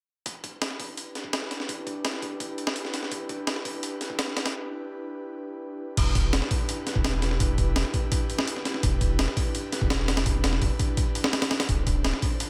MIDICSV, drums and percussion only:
0, 0, Header, 1, 2, 480
1, 0, Start_track
1, 0, Tempo, 357143
1, 349, Time_signature, 4, 2, 24, 8
1, 16797, End_track
2, 0, Start_track
2, 0, Title_t, "Drums"
2, 348, Note_on_c, 9, 36, 93
2, 348, Note_on_c, 9, 46, 75
2, 482, Note_off_c, 9, 36, 0
2, 482, Note_off_c, 9, 46, 0
2, 588, Note_on_c, 9, 36, 83
2, 588, Note_on_c, 9, 46, 60
2, 722, Note_off_c, 9, 36, 0
2, 723, Note_off_c, 9, 46, 0
2, 828, Note_on_c, 9, 38, 101
2, 828, Note_on_c, 9, 46, 77
2, 948, Note_off_c, 9, 38, 0
2, 948, Note_on_c, 9, 38, 50
2, 962, Note_off_c, 9, 46, 0
2, 1068, Note_on_c, 9, 36, 85
2, 1070, Note_on_c, 9, 46, 72
2, 1082, Note_off_c, 9, 38, 0
2, 1203, Note_off_c, 9, 36, 0
2, 1204, Note_off_c, 9, 46, 0
2, 1310, Note_on_c, 9, 46, 75
2, 1444, Note_off_c, 9, 46, 0
2, 1550, Note_on_c, 9, 38, 35
2, 1550, Note_on_c, 9, 46, 58
2, 1669, Note_on_c, 9, 36, 84
2, 1684, Note_off_c, 9, 38, 0
2, 1684, Note_off_c, 9, 46, 0
2, 1790, Note_on_c, 9, 38, 104
2, 1790, Note_on_c, 9, 46, 83
2, 1803, Note_off_c, 9, 36, 0
2, 1911, Note_off_c, 9, 38, 0
2, 1911, Note_on_c, 9, 38, 38
2, 1924, Note_off_c, 9, 46, 0
2, 2030, Note_off_c, 9, 38, 0
2, 2030, Note_on_c, 9, 38, 46
2, 2030, Note_on_c, 9, 46, 60
2, 2150, Note_off_c, 9, 38, 0
2, 2150, Note_on_c, 9, 38, 42
2, 2165, Note_off_c, 9, 46, 0
2, 2269, Note_on_c, 9, 36, 97
2, 2271, Note_on_c, 9, 46, 79
2, 2285, Note_off_c, 9, 38, 0
2, 2404, Note_off_c, 9, 36, 0
2, 2406, Note_off_c, 9, 46, 0
2, 2509, Note_on_c, 9, 36, 86
2, 2511, Note_on_c, 9, 46, 61
2, 2644, Note_off_c, 9, 36, 0
2, 2646, Note_off_c, 9, 46, 0
2, 2750, Note_on_c, 9, 38, 103
2, 2750, Note_on_c, 9, 46, 81
2, 2870, Note_off_c, 9, 38, 0
2, 2870, Note_on_c, 9, 38, 40
2, 2884, Note_off_c, 9, 46, 0
2, 2989, Note_on_c, 9, 36, 88
2, 2989, Note_on_c, 9, 46, 63
2, 3005, Note_off_c, 9, 38, 0
2, 3123, Note_off_c, 9, 36, 0
2, 3124, Note_off_c, 9, 46, 0
2, 3228, Note_on_c, 9, 36, 98
2, 3229, Note_on_c, 9, 46, 79
2, 3363, Note_off_c, 9, 36, 0
2, 3364, Note_off_c, 9, 46, 0
2, 3468, Note_on_c, 9, 46, 63
2, 3588, Note_on_c, 9, 38, 107
2, 3603, Note_off_c, 9, 46, 0
2, 3707, Note_on_c, 9, 46, 82
2, 3722, Note_off_c, 9, 38, 0
2, 3827, Note_on_c, 9, 38, 41
2, 3841, Note_off_c, 9, 46, 0
2, 3947, Note_off_c, 9, 38, 0
2, 3947, Note_on_c, 9, 38, 47
2, 3947, Note_on_c, 9, 46, 64
2, 4068, Note_off_c, 9, 38, 0
2, 4068, Note_on_c, 9, 38, 41
2, 4081, Note_off_c, 9, 46, 0
2, 4187, Note_on_c, 9, 36, 97
2, 4187, Note_on_c, 9, 46, 80
2, 4202, Note_off_c, 9, 38, 0
2, 4322, Note_off_c, 9, 36, 0
2, 4322, Note_off_c, 9, 46, 0
2, 4426, Note_on_c, 9, 46, 61
2, 4427, Note_on_c, 9, 36, 87
2, 4561, Note_off_c, 9, 46, 0
2, 4562, Note_off_c, 9, 36, 0
2, 4666, Note_on_c, 9, 38, 104
2, 4666, Note_on_c, 9, 46, 76
2, 4788, Note_off_c, 9, 38, 0
2, 4788, Note_on_c, 9, 38, 55
2, 4801, Note_off_c, 9, 46, 0
2, 4908, Note_on_c, 9, 36, 87
2, 4908, Note_on_c, 9, 46, 77
2, 4923, Note_off_c, 9, 38, 0
2, 5042, Note_off_c, 9, 36, 0
2, 5042, Note_off_c, 9, 46, 0
2, 5147, Note_on_c, 9, 46, 79
2, 5281, Note_off_c, 9, 46, 0
2, 5388, Note_on_c, 9, 38, 35
2, 5388, Note_on_c, 9, 46, 64
2, 5508, Note_on_c, 9, 36, 93
2, 5523, Note_off_c, 9, 38, 0
2, 5523, Note_off_c, 9, 46, 0
2, 5627, Note_on_c, 9, 38, 113
2, 5627, Note_on_c, 9, 46, 83
2, 5642, Note_off_c, 9, 36, 0
2, 5748, Note_off_c, 9, 38, 0
2, 5748, Note_on_c, 9, 38, 40
2, 5762, Note_off_c, 9, 46, 0
2, 5868, Note_off_c, 9, 38, 0
2, 5868, Note_on_c, 9, 38, 97
2, 5868, Note_on_c, 9, 46, 73
2, 5988, Note_off_c, 9, 38, 0
2, 5988, Note_off_c, 9, 46, 0
2, 5988, Note_on_c, 9, 38, 94
2, 5988, Note_on_c, 9, 46, 73
2, 6122, Note_off_c, 9, 38, 0
2, 6122, Note_off_c, 9, 46, 0
2, 8028, Note_on_c, 9, 36, 109
2, 8028, Note_on_c, 9, 46, 90
2, 8028, Note_on_c, 9, 49, 92
2, 8162, Note_off_c, 9, 36, 0
2, 8163, Note_off_c, 9, 46, 0
2, 8163, Note_off_c, 9, 49, 0
2, 8268, Note_on_c, 9, 36, 95
2, 8269, Note_on_c, 9, 46, 67
2, 8403, Note_off_c, 9, 36, 0
2, 8403, Note_off_c, 9, 46, 0
2, 8508, Note_on_c, 9, 38, 118
2, 8508, Note_on_c, 9, 46, 89
2, 8629, Note_off_c, 9, 38, 0
2, 8629, Note_on_c, 9, 38, 56
2, 8642, Note_off_c, 9, 46, 0
2, 8747, Note_on_c, 9, 46, 83
2, 8748, Note_on_c, 9, 36, 98
2, 8763, Note_off_c, 9, 38, 0
2, 8882, Note_off_c, 9, 36, 0
2, 8882, Note_off_c, 9, 46, 0
2, 8988, Note_on_c, 9, 46, 87
2, 9123, Note_off_c, 9, 46, 0
2, 9228, Note_on_c, 9, 38, 39
2, 9228, Note_on_c, 9, 46, 71
2, 9348, Note_on_c, 9, 36, 96
2, 9363, Note_off_c, 9, 38, 0
2, 9363, Note_off_c, 9, 46, 0
2, 9468, Note_on_c, 9, 38, 117
2, 9468, Note_on_c, 9, 46, 91
2, 9482, Note_off_c, 9, 36, 0
2, 9588, Note_off_c, 9, 38, 0
2, 9588, Note_on_c, 9, 38, 44
2, 9602, Note_off_c, 9, 46, 0
2, 9707, Note_off_c, 9, 38, 0
2, 9707, Note_on_c, 9, 38, 52
2, 9707, Note_on_c, 9, 46, 67
2, 9828, Note_off_c, 9, 38, 0
2, 9828, Note_on_c, 9, 38, 50
2, 9841, Note_off_c, 9, 46, 0
2, 9947, Note_on_c, 9, 46, 86
2, 9948, Note_on_c, 9, 36, 114
2, 9962, Note_off_c, 9, 38, 0
2, 10082, Note_off_c, 9, 36, 0
2, 10082, Note_off_c, 9, 46, 0
2, 10188, Note_on_c, 9, 36, 97
2, 10188, Note_on_c, 9, 46, 66
2, 10322, Note_off_c, 9, 46, 0
2, 10323, Note_off_c, 9, 36, 0
2, 10428, Note_on_c, 9, 38, 114
2, 10428, Note_on_c, 9, 46, 90
2, 10549, Note_off_c, 9, 38, 0
2, 10549, Note_on_c, 9, 38, 44
2, 10563, Note_off_c, 9, 46, 0
2, 10668, Note_on_c, 9, 46, 71
2, 10669, Note_on_c, 9, 36, 95
2, 10683, Note_off_c, 9, 38, 0
2, 10802, Note_off_c, 9, 46, 0
2, 10803, Note_off_c, 9, 36, 0
2, 10909, Note_on_c, 9, 36, 108
2, 10909, Note_on_c, 9, 46, 90
2, 11043, Note_off_c, 9, 46, 0
2, 11044, Note_off_c, 9, 36, 0
2, 11150, Note_on_c, 9, 46, 67
2, 11269, Note_on_c, 9, 38, 119
2, 11285, Note_off_c, 9, 46, 0
2, 11390, Note_on_c, 9, 46, 93
2, 11404, Note_off_c, 9, 38, 0
2, 11510, Note_on_c, 9, 38, 45
2, 11524, Note_off_c, 9, 46, 0
2, 11631, Note_off_c, 9, 38, 0
2, 11631, Note_on_c, 9, 38, 52
2, 11631, Note_on_c, 9, 46, 69
2, 11751, Note_off_c, 9, 38, 0
2, 11751, Note_on_c, 9, 38, 47
2, 11765, Note_off_c, 9, 46, 0
2, 11870, Note_on_c, 9, 36, 112
2, 11870, Note_on_c, 9, 46, 90
2, 11885, Note_off_c, 9, 38, 0
2, 12004, Note_off_c, 9, 36, 0
2, 12004, Note_off_c, 9, 46, 0
2, 12110, Note_on_c, 9, 36, 97
2, 12110, Note_on_c, 9, 46, 70
2, 12245, Note_off_c, 9, 36, 0
2, 12245, Note_off_c, 9, 46, 0
2, 12350, Note_on_c, 9, 38, 119
2, 12350, Note_on_c, 9, 46, 91
2, 12471, Note_off_c, 9, 38, 0
2, 12471, Note_on_c, 9, 38, 58
2, 12484, Note_off_c, 9, 46, 0
2, 12590, Note_on_c, 9, 36, 99
2, 12591, Note_on_c, 9, 46, 83
2, 12606, Note_off_c, 9, 38, 0
2, 12724, Note_off_c, 9, 36, 0
2, 12725, Note_off_c, 9, 46, 0
2, 12831, Note_on_c, 9, 46, 88
2, 12966, Note_off_c, 9, 46, 0
2, 13070, Note_on_c, 9, 38, 41
2, 13070, Note_on_c, 9, 46, 69
2, 13190, Note_on_c, 9, 36, 98
2, 13205, Note_off_c, 9, 38, 0
2, 13205, Note_off_c, 9, 46, 0
2, 13310, Note_on_c, 9, 38, 121
2, 13310, Note_on_c, 9, 46, 90
2, 13325, Note_off_c, 9, 36, 0
2, 13432, Note_off_c, 9, 38, 0
2, 13432, Note_on_c, 9, 38, 42
2, 13444, Note_off_c, 9, 46, 0
2, 13551, Note_off_c, 9, 38, 0
2, 13551, Note_on_c, 9, 38, 103
2, 13551, Note_on_c, 9, 46, 78
2, 13669, Note_off_c, 9, 38, 0
2, 13669, Note_off_c, 9, 46, 0
2, 13669, Note_on_c, 9, 38, 106
2, 13669, Note_on_c, 9, 46, 78
2, 13789, Note_off_c, 9, 46, 0
2, 13789, Note_on_c, 9, 36, 108
2, 13789, Note_on_c, 9, 46, 88
2, 13804, Note_off_c, 9, 38, 0
2, 13923, Note_off_c, 9, 36, 0
2, 13923, Note_off_c, 9, 46, 0
2, 14029, Note_on_c, 9, 38, 105
2, 14029, Note_on_c, 9, 46, 81
2, 14149, Note_off_c, 9, 38, 0
2, 14149, Note_on_c, 9, 38, 52
2, 14163, Note_off_c, 9, 46, 0
2, 14267, Note_on_c, 9, 46, 72
2, 14268, Note_on_c, 9, 36, 87
2, 14283, Note_off_c, 9, 38, 0
2, 14402, Note_off_c, 9, 46, 0
2, 14403, Note_off_c, 9, 36, 0
2, 14508, Note_on_c, 9, 36, 99
2, 14508, Note_on_c, 9, 46, 70
2, 14642, Note_off_c, 9, 46, 0
2, 14643, Note_off_c, 9, 36, 0
2, 14747, Note_on_c, 9, 46, 90
2, 14749, Note_on_c, 9, 36, 110
2, 14882, Note_off_c, 9, 46, 0
2, 14883, Note_off_c, 9, 36, 0
2, 14989, Note_on_c, 9, 46, 70
2, 15108, Note_on_c, 9, 38, 122
2, 15123, Note_off_c, 9, 46, 0
2, 15229, Note_off_c, 9, 38, 0
2, 15229, Note_on_c, 9, 38, 109
2, 15229, Note_on_c, 9, 46, 81
2, 15348, Note_off_c, 9, 38, 0
2, 15348, Note_off_c, 9, 46, 0
2, 15348, Note_on_c, 9, 38, 109
2, 15348, Note_on_c, 9, 46, 80
2, 15467, Note_off_c, 9, 38, 0
2, 15467, Note_off_c, 9, 46, 0
2, 15467, Note_on_c, 9, 38, 103
2, 15467, Note_on_c, 9, 46, 78
2, 15588, Note_off_c, 9, 38, 0
2, 15588, Note_off_c, 9, 46, 0
2, 15588, Note_on_c, 9, 38, 99
2, 15588, Note_on_c, 9, 46, 80
2, 15708, Note_off_c, 9, 46, 0
2, 15708, Note_on_c, 9, 46, 86
2, 15709, Note_on_c, 9, 36, 108
2, 15723, Note_off_c, 9, 38, 0
2, 15843, Note_off_c, 9, 36, 0
2, 15843, Note_off_c, 9, 46, 0
2, 15949, Note_on_c, 9, 36, 94
2, 15949, Note_on_c, 9, 46, 67
2, 16083, Note_off_c, 9, 36, 0
2, 16083, Note_off_c, 9, 46, 0
2, 16188, Note_on_c, 9, 38, 115
2, 16188, Note_on_c, 9, 46, 88
2, 16309, Note_off_c, 9, 38, 0
2, 16309, Note_on_c, 9, 38, 59
2, 16323, Note_off_c, 9, 46, 0
2, 16428, Note_on_c, 9, 46, 80
2, 16429, Note_on_c, 9, 36, 101
2, 16443, Note_off_c, 9, 38, 0
2, 16562, Note_off_c, 9, 46, 0
2, 16563, Note_off_c, 9, 36, 0
2, 16668, Note_on_c, 9, 46, 90
2, 16797, Note_off_c, 9, 46, 0
2, 16797, End_track
0, 0, End_of_file